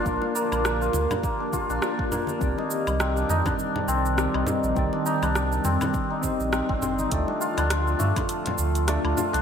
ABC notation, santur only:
X:1
M:4/4
L:1/16
Q:"Swing 16ths" 1/4=102
K:Cdor
V:1 name="Santur"
z2 B,3 F3 B, D F D z2 B,2 | z E3 C D E D z2 C3 E3 | C D E D z2 C3 E z2 C C c E | A, D F D z2 A,3 F3 A, D F D |]